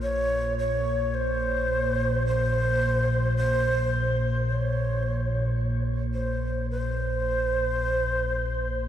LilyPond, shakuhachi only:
\new Staff \with { instrumentName = "Shakuhachi" } { \time 4/4 \key bes \minor \tempo 4 = 54 des''8 des''8 c''4 c''4 c''8. r16 | des''4 r8 c''8 c''2 | }